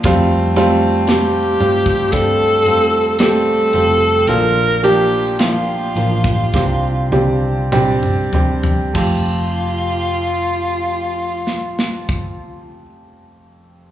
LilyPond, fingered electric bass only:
\new Staff \with { instrumentName = "Fingered electric bass" } { \clef bass \time 4/4 \key f \major \tempo 4 = 52 f,4. g,4 f,4 f,,8 | bes,,4. a,,8 c,8 c,4. | f,,1 | }